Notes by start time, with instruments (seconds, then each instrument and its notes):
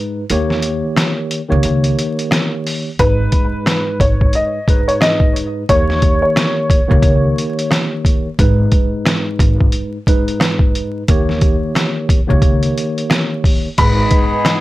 Already playing: tine electric piano G#2 G#3 D#4 B4
0.30 upright bass D#2, tine electric piano D#3 A#3 G4 C#5, closed hi-hat
0.50 snare
0.62 closed hi-hat
0.96 cross-stick, snare, closed hi-hat
1.31 closed hi-hat
1.49 upright bass C#2, tine electric piano D#3 A#3 G4 C#5
1.63 upright bass C#2, closed hi-hat
1.84 closed hi-hat
1.99 closed hi-hat
2.19 closed hi-hat
2.31 cross-stick, snare, closed hi-hat
2.67 open hi-hat
2.99 upright bass G#1, tine electric piano G#2 G#3 D#4 B4, upright piano B4, kick, closed hi-hat
3.32 kick, closed hi-hat
3.66 cross-stick, snare, closed hi-hat
4.00 upright bass G#1, upright piano C#5, kick, closed hi-hat
4.21 kick
4.33 upright piano D#5, closed hi-hat
4.68 tine electric piano G#2 G#3 D#4 B4, kick, closed hi-hat
4.88 upright piano C#5, closed hi-hat
5.01 upright piano D#5, cross-stick, snare, closed hi-hat
5.20 kick
5.36 closed hi-hat
5.69 upright bass D#2, tine electric piano D#3 A#3 G4 C#5, upright piano C#5, kick, closed hi-hat
5.90 snare
6.02 kick, closed hi-hat
6.22 upright piano C#5
6.36 cross-stick, snare, closed hi-hat
6.70 kick, closed hi-hat
6.88 upright bass C#2, tine electric piano D#3 A#3 G4 C#5, kick
7.03 upright bass C#2, kick, closed hi-hat
7.38 closed hi-hat
7.59 closed hi-hat
7.71 cross-stick, snare, closed hi-hat
8.05 kick, closed hi-hat
8.39 upright bass G#1, tine electric piano G#2 G#3 D#4 B4, kick, closed hi-hat
8.72 kick, closed hi-hat
9.06 cross-stick, snare, closed hi-hat
9.39 upright bass G#1, kick, closed hi-hat
9.60 kick
9.72 closed hi-hat
10.07 tine electric piano G#2 G#3 D#4 B4, kick, closed hi-hat
10.28 closed hi-hat
10.40 cross-stick, snare, closed hi-hat
10.59 kick
10.75 closed hi-hat
11.08 upright bass D#2, tine electric piano D#3 A#3 G4 C#5, kick, closed hi-hat
11.29 snare
11.41 kick, closed hi-hat
11.75 cross-stick, snare, closed hi-hat
12.09 kick, closed hi-hat
12.27 upright bass C#2, tine electric piano D#3 A#3 G4 C#5, kick
12.42 upright bass C#2, kick, closed hi-hat
12.63 closed hi-hat
12.78 closed hi-hat
12.98 closed hi-hat
13.10 cross-stick, snare, closed hi-hat
13.44 kick, open hi-hat
13.78 upright bass G#1, tine electric piano G#2 G#3 D#4 B4, horn section G#3 B3 D#4 G#4, upright piano B5, kick, closed hi-hat, crash
14.11 kick, closed hi-hat
14.45 cross-stick, snare, closed hi-hat